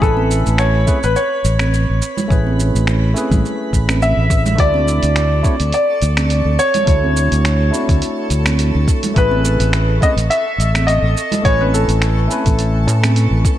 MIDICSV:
0, 0, Header, 1, 6, 480
1, 0, Start_track
1, 0, Tempo, 571429
1, 15, Time_signature, 4, 2, 24, 8
1, 11411, End_track
2, 0, Start_track
2, 0, Title_t, "Synth texture"
2, 0, Program_c, 0, 99
2, 0, Note_on_c, 0, 71, 82
2, 0, Note_on_c, 0, 83, 78
2, 3850, Note_on_c, 0, 69, 81
2, 3855, Note_on_c, 0, 85, 84
2, 3868, Note_off_c, 0, 83, 0
2, 3870, Note_off_c, 0, 71, 0
2, 11411, Note_off_c, 0, 69, 0
2, 11411, Note_off_c, 0, 85, 0
2, 11411, End_track
3, 0, Start_track
3, 0, Title_t, "Grand piano"
3, 0, Program_c, 1, 0
3, 16, Note_on_c, 1, 69, 87
3, 498, Note_on_c, 1, 73, 85
3, 510, Note_off_c, 1, 69, 0
3, 871, Note_on_c, 1, 71, 86
3, 878, Note_off_c, 1, 73, 0
3, 975, Note_on_c, 1, 73, 95
3, 981, Note_off_c, 1, 71, 0
3, 3380, Note_on_c, 1, 76, 96
3, 3447, Note_off_c, 1, 73, 0
3, 3862, Note_on_c, 1, 74, 105
3, 3872, Note_off_c, 1, 76, 0
3, 4809, Note_off_c, 1, 74, 0
3, 4822, Note_on_c, 1, 74, 92
3, 5535, Note_on_c, 1, 73, 107
3, 5560, Note_off_c, 1, 74, 0
3, 6461, Note_off_c, 1, 73, 0
3, 7707, Note_on_c, 1, 71, 98
3, 8387, Note_off_c, 1, 71, 0
3, 8424, Note_on_c, 1, 75, 99
3, 8477, Note_off_c, 1, 75, 0
3, 8654, Note_on_c, 1, 76, 102
3, 9129, Note_on_c, 1, 75, 98
3, 9149, Note_off_c, 1, 76, 0
3, 9578, Note_off_c, 1, 75, 0
3, 9616, Note_on_c, 1, 73, 106
3, 9750, Note_off_c, 1, 73, 0
3, 9752, Note_on_c, 1, 71, 79
3, 9861, Note_off_c, 1, 71, 0
3, 9861, Note_on_c, 1, 69, 79
3, 10784, Note_off_c, 1, 69, 0
3, 11411, End_track
4, 0, Start_track
4, 0, Title_t, "Tine electric piano"
4, 0, Program_c, 2, 4
4, 0, Note_on_c, 2, 57, 79
4, 0, Note_on_c, 2, 61, 70
4, 12, Note_on_c, 2, 64, 70
4, 21, Note_on_c, 2, 80, 79
4, 30, Note_on_c, 2, 71, 95
4, 696, Note_off_c, 2, 57, 0
4, 701, Note_off_c, 2, 61, 0
4, 707, Note_off_c, 2, 64, 0
4, 712, Note_off_c, 2, 80, 0
4, 716, Note_off_c, 2, 71, 0
4, 724, Note_on_c, 2, 57, 76
4, 727, Note_on_c, 2, 61, 72
4, 734, Note_on_c, 2, 64, 76
4, 741, Note_on_c, 2, 68, 73
4, 743, Note_on_c, 2, 71, 85
4, 818, Note_off_c, 2, 57, 0
4, 819, Note_off_c, 2, 61, 0
4, 823, Note_off_c, 2, 64, 0
4, 826, Note_off_c, 2, 68, 0
4, 827, Note_off_c, 2, 71, 0
4, 1911, Note_on_c, 2, 57, 76
4, 1922, Note_on_c, 2, 61, 72
4, 1929, Note_on_c, 2, 64, 68
4, 1938, Note_on_c, 2, 68, 65
4, 1950, Note_on_c, 2, 71, 85
4, 2617, Note_off_c, 2, 57, 0
4, 2622, Note_off_c, 2, 61, 0
4, 2626, Note_off_c, 2, 64, 0
4, 2630, Note_off_c, 2, 68, 0
4, 2635, Note_on_c, 2, 57, 77
4, 2636, Note_off_c, 2, 71, 0
4, 2641, Note_on_c, 2, 61, 66
4, 2653, Note_on_c, 2, 64, 68
4, 2663, Note_on_c, 2, 68, 69
4, 2673, Note_on_c, 2, 71, 82
4, 3815, Note_off_c, 2, 57, 0
4, 3822, Note_off_c, 2, 61, 0
4, 3825, Note_on_c, 2, 57, 81
4, 3828, Note_off_c, 2, 64, 0
4, 3833, Note_off_c, 2, 68, 0
4, 3835, Note_on_c, 2, 62, 80
4, 3838, Note_off_c, 2, 71, 0
4, 3845, Note_on_c, 2, 64, 69
4, 3852, Note_on_c, 2, 66, 73
4, 3862, Note_on_c, 2, 74, 92
4, 4534, Note_off_c, 2, 57, 0
4, 4539, Note_off_c, 2, 62, 0
4, 4543, Note_off_c, 2, 64, 0
4, 4547, Note_off_c, 2, 66, 0
4, 4552, Note_off_c, 2, 74, 0
4, 4555, Note_on_c, 2, 57, 77
4, 4559, Note_on_c, 2, 62, 70
4, 4562, Note_on_c, 2, 64, 65
4, 4570, Note_on_c, 2, 66, 70
4, 4577, Note_on_c, 2, 73, 85
4, 4654, Note_off_c, 2, 57, 0
4, 4655, Note_off_c, 2, 62, 0
4, 4657, Note_off_c, 2, 64, 0
4, 4661, Note_off_c, 2, 66, 0
4, 4664, Note_off_c, 2, 73, 0
4, 5751, Note_on_c, 2, 57, 74
4, 5761, Note_on_c, 2, 62, 71
4, 5773, Note_on_c, 2, 64, 74
4, 5782, Note_on_c, 2, 66, 68
4, 5793, Note_on_c, 2, 73, 88
4, 6457, Note_off_c, 2, 57, 0
4, 6462, Note_off_c, 2, 62, 0
4, 6468, Note_off_c, 2, 64, 0
4, 6472, Note_off_c, 2, 66, 0
4, 6473, Note_on_c, 2, 57, 74
4, 6478, Note_off_c, 2, 73, 0
4, 6483, Note_on_c, 2, 62, 70
4, 6492, Note_on_c, 2, 64, 73
4, 6504, Note_on_c, 2, 66, 65
4, 6514, Note_on_c, 2, 73, 84
4, 7658, Note_off_c, 2, 57, 0
4, 7663, Note_off_c, 2, 62, 0
4, 7667, Note_off_c, 2, 64, 0
4, 7673, Note_off_c, 2, 66, 0
4, 7677, Note_on_c, 2, 57, 82
4, 7678, Note_off_c, 2, 73, 0
4, 7687, Note_on_c, 2, 61, 73
4, 7695, Note_on_c, 2, 64, 73
4, 7707, Note_on_c, 2, 68, 76
4, 7717, Note_on_c, 2, 71, 85
4, 8380, Note_off_c, 2, 57, 0
4, 8385, Note_off_c, 2, 61, 0
4, 8389, Note_off_c, 2, 64, 0
4, 8395, Note_off_c, 2, 68, 0
4, 8400, Note_off_c, 2, 71, 0
4, 8404, Note_on_c, 2, 57, 78
4, 8411, Note_on_c, 2, 61, 73
4, 8416, Note_on_c, 2, 64, 67
4, 8423, Note_on_c, 2, 68, 74
4, 8429, Note_on_c, 2, 71, 87
4, 8498, Note_off_c, 2, 57, 0
4, 8501, Note_off_c, 2, 61, 0
4, 8504, Note_off_c, 2, 64, 0
4, 8507, Note_off_c, 2, 68, 0
4, 8510, Note_off_c, 2, 71, 0
4, 9594, Note_on_c, 2, 57, 76
4, 9603, Note_on_c, 2, 61, 69
4, 9612, Note_on_c, 2, 64, 68
4, 9624, Note_on_c, 2, 80, 72
4, 9634, Note_on_c, 2, 71, 88
4, 10298, Note_off_c, 2, 57, 0
4, 10303, Note_off_c, 2, 61, 0
4, 10307, Note_off_c, 2, 64, 0
4, 10310, Note_on_c, 2, 57, 74
4, 10313, Note_off_c, 2, 80, 0
4, 10318, Note_off_c, 2, 71, 0
4, 10322, Note_on_c, 2, 61, 69
4, 10329, Note_on_c, 2, 64, 66
4, 10340, Note_on_c, 2, 80, 70
4, 10351, Note_on_c, 2, 71, 85
4, 11411, Note_off_c, 2, 57, 0
4, 11411, Note_off_c, 2, 61, 0
4, 11411, Note_off_c, 2, 64, 0
4, 11411, Note_off_c, 2, 71, 0
4, 11411, Note_off_c, 2, 80, 0
4, 11411, End_track
5, 0, Start_track
5, 0, Title_t, "Fingered electric bass"
5, 0, Program_c, 3, 33
5, 14, Note_on_c, 3, 33, 93
5, 352, Note_off_c, 3, 33, 0
5, 393, Note_on_c, 3, 33, 80
5, 711, Note_off_c, 3, 33, 0
5, 873, Note_on_c, 3, 33, 92
5, 961, Note_off_c, 3, 33, 0
5, 1214, Note_on_c, 3, 33, 86
5, 1552, Note_off_c, 3, 33, 0
5, 1593, Note_on_c, 3, 33, 72
5, 1681, Note_off_c, 3, 33, 0
5, 1935, Note_on_c, 3, 33, 82
5, 2273, Note_off_c, 3, 33, 0
5, 2310, Note_on_c, 3, 33, 80
5, 2629, Note_off_c, 3, 33, 0
5, 2782, Note_on_c, 3, 33, 101
5, 2876, Note_off_c, 3, 33, 0
5, 3132, Note_on_c, 3, 33, 79
5, 3471, Note_off_c, 3, 33, 0
5, 3504, Note_on_c, 3, 33, 74
5, 3826, Note_off_c, 3, 33, 0
5, 3854, Note_on_c, 3, 38, 85
5, 4192, Note_off_c, 3, 38, 0
5, 4227, Note_on_c, 3, 38, 74
5, 4548, Note_off_c, 3, 38, 0
5, 4705, Note_on_c, 3, 38, 92
5, 4797, Note_off_c, 3, 38, 0
5, 5059, Note_on_c, 3, 38, 85
5, 5394, Note_off_c, 3, 38, 0
5, 5420, Note_on_c, 3, 38, 78
5, 5514, Note_off_c, 3, 38, 0
5, 5775, Note_on_c, 3, 38, 91
5, 6113, Note_off_c, 3, 38, 0
5, 6150, Note_on_c, 3, 38, 81
5, 6469, Note_off_c, 3, 38, 0
5, 6628, Note_on_c, 3, 38, 92
5, 6719, Note_off_c, 3, 38, 0
5, 6976, Note_on_c, 3, 38, 82
5, 7313, Note_off_c, 3, 38, 0
5, 7352, Note_on_c, 3, 38, 77
5, 7440, Note_off_c, 3, 38, 0
5, 7700, Note_on_c, 3, 33, 90
5, 8035, Note_off_c, 3, 33, 0
5, 8065, Note_on_c, 3, 33, 82
5, 8387, Note_off_c, 3, 33, 0
5, 8539, Note_on_c, 3, 33, 100
5, 8634, Note_off_c, 3, 33, 0
5, 8890, Note_on_c, 3, 33, 85
5, 9230, Note_off_c, 3, 33, 0
5, 9261, Note_on_c, 3, 33, 80
5, 9355, Note_off_c, 3, 33, 0
5, 9617, Note_on_c, 3, 33, 89
5, 9954, Note_off_c, 3, 33, 0
5, 9980, Note_on_c, 3, 33, 84
5, 10304, Note_off_c, 3, 33, 0
5, 10467, Note_on_c, 3, 33, 90
5, 10814, Note_off_c, 3, 33, 0
5, 10814, Note_on_c, 3, 45, 75
5, 11152, Note_off_c, 3, 45, 0
5, 11180, Note_on_c, 3, 33, 88
5, 11275, Note_off_c, 3, 33, 0
5, 11411, End_track
6, 0, Start_track
6, 0, Title_t, "Drums"
6, 15, Note_on_c, 9, 36, 101
6, 24, Note_on_c, 9, 69, 27
6, 99, Note_off_c, 9, 36, 0
6, 108, Note_off_c, 9, 69, 0
6, 141, Note_on_c, 9, 63, 88
6, 225, Note_off_c, 9, 63, 0
6, 261, Note_on_c, 9, 69, 68
6, 345, Note_off_c, 9, 69, 0
6, 390, Note_on_c, 9, 69, 38
6, 474, Note_off_c, 9, 69, 0
6, 490, Note_on_c, 9, 26, 74
6, 496, Note_on_c, 9, 69, 30
6, 574, Note_off_c, 9, 26, 0
6, 580, Note_off_c, 9, 69, 0
6, 731, Note_on_c, 9, 63, 60
6, 735, Note_on_c, 9, 69, 65
6, 737, Note_on_c, 9, 36, 93
6, 815, Note_off_c, 9, 63, 0
6, 819, Note_off_c, 9, 69, 0
6, 821, Note_off_c, 9, 36, 0
6, 866, Note_on_c, 9, 69, 41
6, 950, Note_off_c, 9, 69, 0
6, 975, Note_on_c, 9, 69, 31
6, 1059, Note_off_c, 9, 69, 0
6, 1217, Note_on_c, 9, 69, 73
6, 1301, Note_off_c, 9, 69, 0
6, 1339, Note_on_c, 9, 26, 69
6, 1342, Note_on_c, 9, 63, 76
6, 1345, Note_on_c, 9, 69, 38
6, 1423, Note_off_c, 9, 26, 0
6, 1426, Note_off_c, 9, 63, 0
6, 1429, Note_off_c, 9, 69, 0
6, 1460, Note_on_c, 9, 69, 29
6, 1544, Note_off_c, 9, 69, 0
6, 1697, Note_on_c, 9, 69, 68
6, 1781, Note_off_c, 9, 69, 0
6, 1825, Note_on_c, 9, 64, 89
6, 1831, Note_on_c, 9, 69, 40
6, 1909, Note_off_c, 9, 64, 0
6, 1915, Note_off_c, 9, 69, 0
6, 1936, Note_on_c, 9, 36, 105
6, 1942, Note_on_c, 9, 69, 30
6, 2020, Note_off_c, 9, 36, 0
6, 2026, Note_off_c, 9, 69, 0
6, 2072, Note_on_c, 9, 63, 87
6, 2156, Note_off_c, 9, 63, 0
6, 2182, Note_on_c, 9, 69, 64
6, 2266, Note_off_c, 9, 69, 0
6, 2315, Note_on_c, 9, 69, 40
6, 2399, Note_off_c, 9, 69, 0
6, 2413, Note_on_c, 9, 26, 73
6, 2420, Note_on_c, 9, 69, 32
6, 2497, Note_off_c, 9, 26, 0
6, 2504, Note_off_c, 9, 69, 0
6, 2657, Note_on_c, 9, 63, 65
6, 2659, Note_on_c, 9, 69, 69
6, 2741, Note_off_c, 9, 63, 0
6, 2743, Note_off_c, 9, 69, 0
6, 2785, Note_on_c, 9, 36, 90
6, 2788, Note_on_c, 9, 69, 41
6, 2791, Note_on_c, 9, 64, 77
6, 2869, Note_off_c, 9, 36, 0
6, 2872, Note_off_c, 9, 69, 0
6, 2875, Note_off_c, 9, 64, 0
6, 2901, Note_on_c, 9, 69, 30
6, 2985, Note_off_c, 9, 69, 0
6, 3134, Note_on_c, 9, 36, 57
6, 3140, Note_on_c, 9, 69, 72
6, 3218, Note_off_c, 9, 36, 0
6, 3224, Note_off_c, 9, 69, 0
6, 3264, Note_on_c, 9, 63, 88
6, 3266, Note_on_c, 9, 26, 71
6, 3272, Note_on_c, 9, 69, 38
6, 3348, Note_off_c, 9, 63, 0
6, 3350, Note_off_c, 9, 26, 0
6, 3356, Note_off_c, 9, 69, 0
6, 3378, Note_on_c, 9, 69, 28
6, 3462, Note_off_c, 9, 69, 0
6, 3614, Note_on_c, 9, 36, 99
6, 3617, Note_on_c, 9, 69, 74
6, 3698, Note_off_c, 9, 36, 0
6, 3701, Note_off_c, 9, 69, 0
6, 3743, Note_on_c, 9, 64, 89
6, 3746, Note_on_c, 9, 69, 38
6, 3827, Note_off_c, 9, 64, 0
6, 3830, Note_off_c, 9, 69, 0
6, 3851, Note_on_c, 9, 42, 52
6, 3852, Note_on_c, 9, 36, 109
6, 3857, Note_on_c, 9, 69, 28
6, 3935, Note_off_c, 9, 42, 0
6, 3936, Note_off_c, 9, 36, 0
6, 3941, Note_off_c, 9, 69, 0
6, 3981, Note_on_c, 9, 63, 93
6, 4065, Note_off_c, 9, 63, 0
6, 4100, Note_on_c, 9, 69, 68
6, 4184, Note_off_c, 9, 69, 0
6, 4222, Note_on_c, 9, 42, 43
6, 4228, Note_on_c, 9, 69, 43
6, 4306, Note_off_c, 9, 42, 0
6, 4312, Note_off_c, 9, 69, 0
6, 4333, Note_on_c, 9, 26, 72
6, 4333, Note_on_c, 9, 42, 55
6, 4339, Note_on_c, 9, 69, 31
6, 4417, Note_off_c, 9, 26, 0
6, 4417, Note_off_c, 9, 42, 0
6, 4423, Note_off_c, 9, 69, 0
6, 4574, Note_on_c, 9, 36, 100
6, 4574, Note_on_c, 9, 69, 69
6, 4576, Note_on_c, 9, 63, 59
6, 4658, Note_off_c, 9, 36, 0
6, 4658, Note_off_c, 9, 69, 0
6, 4660, Note_off_c, 9, 63, 0
6, 4701, Note_on_c, 9, 42, 42
6, 4708, Note_on_c, 9, 69, 40
6, 4785, Note_off_c, 9, 42, 0
6, 4792, Note_off_c, 9, 69, 0
6, 4809, Note_on_c, 9, 42, 52
6, 4815, Note_on_c, 9, 69, 30
6, 4893, Note_off_c, 9, 42, 0
6, 4899, Note_off_c, 9, 69, 0
6, 5053, Note_on_c, 9, 42, 31
6, 5060, Note_on_c, 9, 69, 71
6, 5137, Note_off_c, 9, 42, 0
6, 5144, Note_off_c, 9, 69, 0
6, 5183, Note_on_c, 9, 26, 74
6, 5183, Note_on_c, 9, 42, 43
6, 5184, Note_on_c, 9, 63, 92
6, 5189, Note_on_c, 9, 69, 42
6, 5267, Note_off_c, 9, 26, 0
6, 5267, Note_off_c, 9, 42, 0
6, 5268, Note_off_c, 9, 63, 0
6, 5273, Note_off_c, 9, 69, 0
6, 5293, Note_on_c, 9, 42, 53
6, 5299, Note_on_c, 9, 69, 30
6, 5377, Note_off_c, 9, 42, 0
6, 5383, Note_off_c, 9, 69, 0
6, 5537, Note_on_c, 9, 69, 71
6, 5621, Note_off_c, 9, 69, 0
6, 5662, Note_on_c, 9, 42, 42
6, 5668, Note_on_c, 9, 64, 84
6, 5669, Note_on_c, 9, 69, 43
6, 5746, Note_off_c, 9, 42, 0
6, 5752, Note_off_c, 9, 64, 0
6, 5753, Note_off_c, 9, 69, 0
6, 5773, Note_on_c, 9, 42, 52
6, 5774, Note_on_c, 9, 36, 106
6, 5779, Note_on_c, 9, 69, 31
6, 5857, Note_off_c, 9, 42, 0
6, 5858, Note_off_c, 9, 36, 0
6, 5863, Note_off_c, 9, 69, 0
6, 5915, Note_on_c, 9, 63, 92
6, 5999, Note_off_c, 9, 63, 0
6, 6020, Note_on_c, 9, 69, 75
6, 6104, Note_off_c, 9, 69, 0
6, 6148, Note_on_c, 9, 42, 39
6, 6155, Note_on_c, 9, 69, 43
6, 6232, Note_off_c, 9, 42, 0
6, 6239, Note_off_c, 9, 69, 0
6, 6257, Note_on_c, 9, 26, 75
6, 6257, Note_on_c, 9, 42, 53
6, 6263, Note_on_c, 9, 69, 32
6, 6341, Note_off_c, 9, 26, 0
6, 6341, Note_off_c, 9, 42, 0
6, 6347, Note_off_c, 9, 69, 0
6, 6502, Note_on_c, 9, 63, 59
6, 6502, Note_on_c, 9, 69, 73
6, 6586, Note_off_c, 9, 63, 0
6, 6586, Note_off_c, 9, 69, 0
6, 6627, Note_on_c, 9, 36, 99
6, 6628, Note_on_c, 9, 42, 42
6, 6634, Note_on_c, 9, 69, 42
6, 6711, Note_off_c, 9, 36, 0
6, 6712, Note_off_c, 9, 42, 0
6, 6718, Note_off_c, 9, 69, 0
6, 6736, Note_on_c, 9, 42, 52
6, 6742, Note_on_c, 9, 69, 32
6, 6820, Note_off_c, 9, 42, 0
6, 6826, Note_off_c, 9, 69, 0
6, 6974, Note_on_c, 9, 42, 32
6, 6980, Note_on_c, 9, 69, 81
6, 7058, Note_off_c, 9, 42, 0
6, 7064, Note_off_c, 9, 69, 0
6, 7104, Note_on_c, 9, 26, 75
6, 7104, Note_on_c, 9, 42, 42
6, 7109, Note_on_c, 9, 63, 86
6, 7110, Note_on_c, 9, 69, 43
6, 7188, Note_off_c, 9, 26, 0
6, 7188, Note_off_c, 9, 42, 0
6, 7193, Note_off_c, 9, 63, 0
6, 7194, Note_off_c, 9, 69, 0
6, 7215, Note_on_c, 9, 42, 52
6, 7221, Note_on_c, 9, 69, 31
6, 7299, Note_off_c, 9, 42, 0
6, 7305, Note_off_c, 9, 69, 0
6, 7457, Note_on_c, 9, 36, 103
6, 7461, Note_on_c, 9, 69, 78
6, 7541, Note_off_c, 9, 36, 0
6, 7545, Note_off_c, 9, 69, 0
6, 7585, Note_on_c, 9, 42, 45
6, 7591, Note_on_c, 9, 64, 84
6, 7591, Note_on_c, 9, 69, 45
6, 7669, Note_off_c, 9, 42, 0
6, 7675, Note_off_c, 9, 64, 0
6, 7675, Note_off_c, 9, 69, 0
6, 7696, Note_on_c, 9, 42, 48
6, 7697, Note_on_c, 9, 36, 113
6, 7702, Note_on_c, 9, 69, 31
6, 7780, Note_off_c, 9, 42, 0
6, 7781, Note_off_c, 9, 36, 0
6, 7786, Note_off_c, 9, 69, 0
6, 7823, Note_on_c, 9, 63, 93
6, 7907, Note_off_c, 9, 63, 0
6, 7937, Note_on_c, 9, 69, 80
6, 8021, Note_off_c, 9, 69, 0
6, 8064, Note_on_c, 9, 42, 42
6, 8070, Note_on_c, 9, 69, 44
6, 8148, Note_off_c, 9, 42, 0
6, 8154, Note_off_c, 9, 69, 0
6, 8174, Note_on_c, 9, 26, 76
6, 8174, Note_on_c, 9, 42, 49
6, 8180, Note_on_c, 9, 69, 32
6, 8258, Note_off_c, 9, 26, 0
6, 8258, Note_off_c, 9, 42, 0
6, 8264, Note_off_c, 9, 69, 0
6, 8418, Note_on_c, 9, 36, 107
6, 8422, Note_on_c, 9, 69, 73
6, 8423, Note_on_c, 9, 63, 64
6, 8502, Note_off_c, 9, 36, 0
6, 8506, Note_off_c, 9, 69, 0
6, 8507, Note_off_c, 9, 63, 0
6, 8548, Note_on_c, 9, 42, 40
6, 8554, Note_on_c, 9, 69, 44
6, 8632, Note_off_c, 9, 42, 0
6, 8638, Note_off_c, 9, 69, 0
6, 8658, Note_on_c, 9, 42, 51
6, 8664, Note_on_c, 9, 69, 33
6, 8742, Note_off_c, 9, 42, 0
6, 8748, Note_off_c, 9, 69, 0
6, 8903, Note_on_c, 9, 42, 29
6, 8909, Note_on_c, 9, 69, 77
6, 8987, Note_off_c, 9, 42, 0
6, 8993, Note_off_c, 9, 69, 0
6, 9029, Note_on_c, 9, 63, 91
6, 9030, Note_on_c, 9, 26, 72
6, 9030, Note_on_c, 9, 42, 41
6, 9037, Note_on_c, 9, 69, 46
6, 9113, Note_off_c, 9, 63, 0
6, 9114, Note_off_c, 9, 26, 0
6, 9114, Note_off_c, 9, 42, 0
6, 9121, Note_off_c, 9, 69, 0
6, 9140, Note_on_c, 9, 42, 49
6, 9146, Note_on_c, 9, 69, 32
6, 9224, Note_off_c, 9, 42, 0
6, 9230, Note_off_c, 9, 69, 0
6, 9385, Note_on_c, 9, 69, 80
6, 9469, Note_off_c, 9, 69, 0
6, 9506, Note_on_c, 9, 64, 100
6, 9509, Note_on_c, 9, 42, 41
6, 9516, Note_on_c, 9, 69, 44
6, 9590, Note_off_c, 9, 64, 0
6, 9593, Note_off_c, 9, 42, 0
6, 9600, Note_off_c, 9, 69, 0
6, 9617, Note_on_c, 9, 36, 111
6, 9618, Note_on_c, 9, 42, 45
6, 9625, Note_on_c, 9, 69, 31
6, 9701, Note_off_c, 9, 36, 0
6, 9702, Note_off_c, 9, 42, 0
6, 9709, Note_off_c, 9, 69, 0
6, 9751, Note_on_c, 9, 63, 93
6, 9835, Note_off_c, 9, 63, 0
6, 9865, Note_on_c, 9, 69, 76
6, 9949, Note_off_c, 9, 69, 0
6, 9985, Note_on_c, 9, 42, 39
6, 9992, Note_on_c, 9, 69, 43
6, 10069, Note_off_c, 9, 42, 0
6, 10076, Note_off_c, 9, 69, 0
6, 10094, Note_on_c, 9, 26, 71
6, 10094, Note_on_c, 9, 42, 51
6, 10100, Note_on_c, 9, 69, 30
6, 10178, Note_off_c, 9, 26, 0
6, 10178, Note_off_c, 9, 42, 0
6, 10184, Note_off_c, 9, 69, 0
6, 10335, Note_on_c, 9, 63, 61
6, 10339, Note_on_c, 9, 69, 73
6, 10419, Note_off_c, 9, 63, 0
6, 10423, Note_off_c, 9, 69, 0
6, 10465, Note_on_c, 9, 42, 41
6, 10467, Note_on_c, 9, 36, 100
6, 10471, Note_on_c, 9, 69, 44
6, 10549, Note_off_c, 9, 42, 0
6, 10551, Note_off_c, 9, 36, 0
6, 10555, Note_off_c, 9, 69, 0
6, 10573, Note_on_c, 9, 42, 47
6, 10579, Note_on_c, 9, 69, 31
6, 10657, Note_off_c, 9, 42, 0
6, 10663, Note_off_c, 9, 69, 0
6, 10818, Note_on_c, 9, 42, 29
6, 10824, Note_on_c, 9, 69, 76
6, 10902, Note_off_c, 9, 42, 0
6, 10908, Note_off_c, 9, 69, 0
6, 10946, Note_on_c, 9, 63, 97
6, 10950, Note_on_c, 9, 26, 68
6, 10950, Note_on_c, 9, 42, 39
6, 10956, Note_on_c, 9, 69, 42
6, 11030, Note_off_c, 9, 63, 0
6, 11034, Note_off_c, 9, 26, 0
6, 11034, Note_off_c, 9, 42, 0
6, 11040, Note_off_c, 9, 69, 0
6, 11056, Note_on_c, 9, 42, 48
6, 11062, Note_on_c, 9, 69, 34
6, 11140, Note_off_c, 9, 42, 0
6, 11146, Note_off_c, 9, 69, 0
6, 11296, Note_on_c, 9, 36, 106
6, 11300, Note_on_c, 9, 69, 80
6, 11380, Note_off_c, 9, 36, 0
6, 11384, Note_off_c, 9, 69, 0
6, 11411, End_track
0, 0, End_of_file